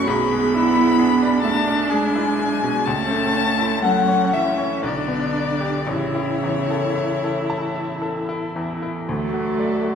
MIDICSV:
0, 0, Header, 1, 5, 480
1, 0, Start_track
1, 0, Tempo, 917431
1, 39, Time_signature, 3, 2, 24, 8
1, 999, Tempo, 961538
1, 1959, Tempo, 1006711
1, 2439, Tempo, 1061947
1, 4359, Tempo, 1013514
1, 4768, End_track
2, 0, Start_track
2, 0, Title_t, "Violin"
2, 0, Program_c, 0, 40
2, 34, Note_on_c, 0, 83, 112
2, 740, Note_off_c, 0, 83, 0
2, 747, Note_on_c, 0, 81, 113
2, 993, Note_on_c, 0, 80, 105
2, 1001, Note_off_c, 0, 81, 0
2, 1469, Note_on_c, 0, 81, 114
2, 1477, Note_off_c, 0, 80, 0
2, 1955, Note_off_c, 0, 81, 0
2, 1958, Note_on_c, 0, 78, 112
2, 2195, Note_on_c, 0, 76, 90
2, 2202, Note_off_c, 0, 78, 0
2, 2438, Note_off_c, 0, 76, 0
2, 2440, Note_on_c, 0, 74, 91
2, 2910, Note_on_c, 0, 73, 89
2, 2916, Note_off_c, 0, 74, 0
2, 3876, Note_off_c, 0, 73, 0
2, 4359, Note_on_c, 0, 69, 69
2, 4768, Note_off_c, 0, 69, 0
2, 4768, End_track
3, 0, Start_track
3, 0, Title_t, "Grand piano"
3, 0, Program_c, 1, 0
3, 0, Control_c, 1, 64, 127
3, 0, Note_on_c, 1, 42, 63
3, 0, Note_on_c, 1, 57, 72
3, 0, Note_on_c, 1, 74, 74
3, 38, Note_on_c, 1, 35, 89
3, 49, Control_c, 1, 64, 0
3, 53, Note_off_c, 1, 42, 0
3, 53, Note_off_c, 1, 74, 0
3, 54, Note_off_c, 1, 57, 0
3, 115, Control_c, 1, 64, 127
3, 162, Note_on_c, 1, 56, 67
3, 283, Note_on_c, 1, 62, 60
3, 354, Note_off_c, 1, 56, 0
3, 400, Note_on_c, 1, 64, 62
3, 474, Note_off_c, 1, 62, 0
3, 517, Note_on_c, 1, 68, 72
3, 591, Note_off_c, 1, 64, 0
3, 642, Note_on_c, 1, 74, 69
3, 709, Note_off_c, 1, 68, 0
3, 758, Note_on_c, 1, 76, 69
3, 831, Note_off_c, 1, 74, 0
3, 878, Note_on_c, 1, 74, 71
3, 950, Note_off_c, 1, 76, 0
3, 1000, Note_on_c, 1, 68, 66
3, 1070, Note_off_c, 1, 74, 0
3, 1122, Note_on_c, 1, 64, 65
3, 1190, Note_off_c, 1, 68, 0
3, 1238, Note_on_c, 1, 56, 70
3, 1312, Note_off_c, 1, 64, 0
3, 1360, Note_on_c, 1, 47, 63
3, 1431, Note_off_c, 1, 56, 0
3, 1458, Note_off_c, 1, 35, 0
3, 1479, Note_on_c, 1, 37, 85
3, 1480, Note_off_c, 1, 47, 0
3, 1488, Control_c, 1, 64, 0
3, 1560, Control_c, 1, 64, 127
3, 1598, Note_on_c, 1, 57, 66
3, 1717, Note_on_c, 1, 61, 65
3, 1790, Note_off_c, 1, 57, 0
3, 1838, Note_on_c, 1, 64, 65
3, 1911, Note_off_c, 1, 61, 0
3, 1961, Note_on_c, 1, 69, 67
3, 2030, Note_off_c, 1, 64, 0
3, 2075, Note_on_c, 1, 73, 69
3, 2149, Note_off_c, 1, 69, 0
3, 2199, Note_on_c, 1, 76, 65
3, 2268, Note_off_c, 1, 73, 0
3, 2316, Note_on_c, 1, 73, 67
3, 2391, Note_off_c, 1, 76, 0
3, 2420, Note_off_c, 1, 37, 0
3, 2435, Note_on_c, 1, 35, 70
3, 2439, Note_off_c, 1, 73, 0
3, 2447, Control_c, 1, 64, 0
3, 2529, Control_c, 1, 64, 127
3, 2548, Note_on_c, 1, 59, 56
3, 2660, Note_on_c, 1, 62, 64
3, 2740, Note_off_c, 1, 59, 0
3, 2784, Note_on_c, 1, 67, 59
3, 2858, Note_off_c, 1, 62, 0
3, 2897, Note_off_c, 1, 35, 0
3, 2904, Note_on_c, 1, 33, 74
3, 2910, Note_off_c, 1, 67, 0
3, 2922, Control_c, 1, 64, 0
3, 3017, Control_c, 1, 64, 127
3, 3031, Note_on_c, 1, 64, 60
3, 3159, Note_on_c, 1, 40, 56
3, 3230, Note_off_c, 1, 64, 0
3, 3282, Note_on_c, 1, 69, 61
3, 3354, Note_off_c, 1, 40, 0
3, 3395, Note_on_c, 1, 76, 67
3, 3474, Note_off_c, 1, 69, 0
3, 3523, Note_on_c, 1, 69, 63
3, 3590, Note_off_c, 1, 76, 0
3, 3640, Note_on_c, 1, 81, 60
3, 3712, Note_off_c, 1, 69, 0
3, 3757, Note_on_c, 1, 76, 62
3, 3830, Note_off_c, 1, 81, 0
3, 3875, Note_on_c, 1, 69, 61
3, 3949, Note_off_c, 1, 76, 0
3, 3998, Note_on_c, 1, 64, 58
3, 4070, Note_off_c, 1, 69, 0
3, 4121, Note_on_c, 1, 40, 63
3, 4193, Note_off_c, 1, 64, 0
3, 4240, Note_on_c, 1, 64, 59
3, 4312, Note_off_c, 1, 40, 0
3, 4336, Note_off_c, 1, 33, 0
3, 4358, Note_off_c, 1, 64, 0
3, 4359, Note_on_c, 1, 38, 67
3, 4368, Control_c, 1, 64, 0
3, 4436, Control_c, 1, 64, 127
3, 4477, Note_on_c, 1, 66, 51
3, 4599, Note_on_c, 1, 74, 56
3, 4670, Note_off_c, 1, 66, 0
3, 4718, Note_on_c, 1, 66, 48
3, 4768, Note_off_c, 1, 38, 0
3, 4768, Note_off_c, 1, 66, 0
3, 4768, Note_off_c, 1, 74, 0
3, 4768, End_track
4, 0, Start_track
4, 0, Title_t, "Viola"
4, 0, Program_c, 2, 41
4, 41, Note_on_c, 2, 68, 83
4, 283, Note_on_c, 2, 64, 80
4, 291, Note_off_c, 2, 68, 0
4, 521, Note_on_c, 2, 62, 81
4, 529, Note_off_c, 2, 64, 0
4, 1479, Note_on_c, 2, 61, 77
4, 1487, Note_off_c, 2, 62, 0
4, 1952, Note_off_c, 2, 61, 0
4, 1955, Note_on_c, 2, 61, 78
4, 2436, Note_on_c, 2, 62, 77
4, 2443, Note_off_c, 2, 61, 0
4, 2910, Note_off_c, 2, 62, 0
4, 2913, Note_on_c, 2, 64, 72
4, 4246, Note_off_c, 2, 64, 0
4, 4357, Note_on_c, 2, 54, 71
4, 4768, Note_off_c, 2, 54, 0
4, 4768, End_track
5, 0, Start_track
5, 0, Title_t, "Cello"
5, 0, Program_c, 3, 42
5, 32, Note_on_c, 3, 59, 114
5, 750, Note_off_c, 3, 59, 0
5, 753, Note_on_c, 3, 57, 96
5, 999, Note_on_c, 3, 56, 87
5, 1006, Note_off_c, 3, 57, 0
5, 1474, Note_on_c, 3, 57, 104
5, 1482, Note_off_c, 3, 56, 0
5, 1958, Note_on_c, 3, 54, 99
5, 1965, Note_off_c, 3, 57, 0
5, 2197, Note_on_c, 3, 52, 82
5, 2204, Note_off_c, 3, 54, 0
5, 2435, Note_on_c, 3, 50, 80
5, 2442, Note_off_c, 3, 52, 0
5, 2912, Note_off_c, 3, 50, 0
5, 2916, Note_on_c, 3, 49, 89
5, 3861, Note_off_c, 3, 49, 0
5, 4358, Note_on_c, 3, 57, 98
5, 4768, Note_off_c, 3, 57, 0
5, 4768, End_track
0, 0, End_of_file